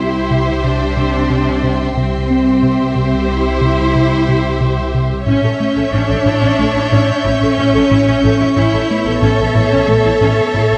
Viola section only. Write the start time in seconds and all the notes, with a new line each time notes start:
Already playing: G4
1.97 G4
5.27 C#4
5.43 A4
5.76 A4
5.93 C#4
6.10 A4
6.26 E4
6.42 C#4
6.59 A4
6.75 E4
6.91 C#4
7.25 E4
7.41 A4
7.57 C#4
7.74 A4
7.90 E4
8.06 C#4
8.23 A4
8.39 E4
8.56 C#4
8.73 A4
9.06 A4
9.21 C#4
9.38 A4
9.53 E4
9.71 C#4
9.88 A4
10.04 E4
10.21 C#4
10.54 E4
10.72 A4